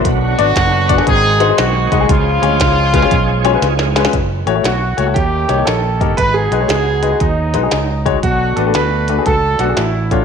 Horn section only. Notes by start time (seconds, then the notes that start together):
0.04 B3 D4 F#4
1.07 C4 D#4 G#4
1.59 C4 D#4 F#4
2.09 G#3 C#4 F4
4.66 F#4
4.99 F#4
5.16 A#3 C#4 G4
5.67 C#4 A4
6.19 D#4 F#4 B4
6.36 B3 D#4 G#4
6.71 B3 D#4 G#4
7.21 F#3 B3 D#4
8.23 A3 D4 F#4
8.75 D4 F#4 B4
9.25 D4 F#4 A4
9.77 E4
10.11 G#3 C#4 F4